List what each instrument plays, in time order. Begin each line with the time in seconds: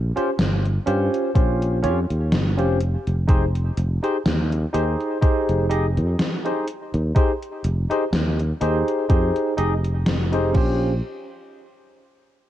Already playing: fretless electric bass A#1
0.16 tine electric piano C#4 F4 G4 C5, muted fretless electric bass stroke, closed hi-hat
0.39 fretless electric bass G1, snare, closed hi-hat
0.65 closed hi-hat
0.86 fretless electric bass G2, tine electric piano C#4 F4 G4 C5, closed hi-hat
1.14 closed hi-hat
1.35 fretless electric bass A#1, tine electric piano C#4 F4 G4 C5, kick, closed hi-hat
1.62 closed hi-hat
1.82 fretless electric bass F2, tine electric piano C#4 F4 G4 C#5, closed hi-hat
2.10 fretless electric bass D#2, closed hi-hat
2.32 fretless electric bass G1, snare, closed hi-hat
2.57 fretless electric bass F1, tine electric piano C#4 F4 G4 C5, closed hi-hat
2.81 closed hi-hat
3.07 fretless electric bass F1, closed hi-hat
3.28 tine electric piano D#4 G4 G#4 C5, kick, closed hi-hat
3.55 closed hi-hat
3.77 fretless electric bass F1, closed hi-hat
4.03 tine electric piano D#4 G4 G#4 C5, closed hi-hat
4.26 fretless electric bass D#2, snare, closed hi-hat
4.52 closed hi-hat
4.73 fretless electric bass D#2, tine electric piano D#4 G4 G#4 C5, closed hi-hat
5.00 closed hi-hat
5.21 tine electric piano D#4 G4 G#4 C5, muted fretless electric bass stroke, kick, closed hi-hat
5.49 fretless electric bass F1, closed hi-hat
5.70 tine electric piano D#4 G4 G#4 D#5, closed hi-hat
5.97 fretless electric bass F2, closed hi-hat
6.19 snare, closed hi-hat
6.45 tine electric piano D#4 G4 G#4 C5, closed hi-hat
6.68 closed hi-hat
6.94 fretless electric bass D#2, closed hi-hat
7.15 tine electric piano D#4 G4 G#4 C5, kick, closed hi-hat
7.43 closed hi-hat
7.64 fretless electric bass F1, closed hi-hat
7.90 tine electric piano D#4 G4 G#4 C5, closed hi-hat
8.13 fretless electric bass D#2, snare, closed hi-hat
8.39 closed hi-hat
8.61 fretless electric bass D#2, tine electric piano D#4 G4 G#4 C5, closed hi-hat
8.88 closed hi-hat
9.09 fretless electric bass F2, tine electric piano D#4 G4 G#4 C5, kick, closed hi-hat
9.36 closed hi-hat
9.57 fretless electric bass F1, tine electric piano D#4 G4 G#4 D#5, closed hi-hat
9.84 closed hi-hat
10.06 snare, closed hi-hat
10.32 tine electric piano D#4 G4 G#4 C5, closed hi-hat
10.53 fretless electric bass A#1, tine electric piano C#4 F4 G4, kick, crash
10.57 tine electric piano C5